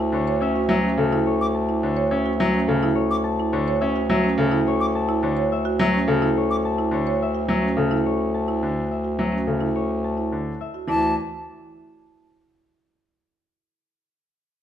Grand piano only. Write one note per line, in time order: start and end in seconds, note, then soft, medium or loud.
0.12 0.31 D3 medium
0.41 0.60 C#4 medium
0.69 0.88 F#3 medium
0.97 1.16 C#3 medium
1.83 2.01 D3 medium
2.11 2.29 C#4 medium
2.40 2.58 F#3 medium
2.69 2.86 C#3 medium
3.53 3.71 D3 medium
3.82 4.00 C#4 medium
4.10 4.28 F#3 medium
4.38 4.56 C#3 medium
5.23 5.41 D3 medium
5.79 5.98 F#3 medium
6.08 6.26 C#3 medium
6.91 7.10 D3 medium
7.48 7.67 F#3 medium
7.77 7.95 C#3 medium
8.63 8.81 D3 medium
9.19 9.37 F#3 medium
9.47 9.65 C#3 soft
10.32 10.50 D3 soft
10.87 11.14 E3 medium